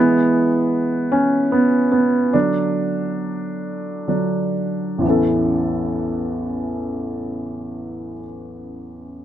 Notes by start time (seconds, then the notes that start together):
Already playing: E3 G#3 B3
1.12 C#4
1.52 B3
1.92 B3
2.33 D3 F#3 D4
4.08 D3 F#3 D4
4.98 A1 E2
5.03 E3 B3
5.07 C#4 A4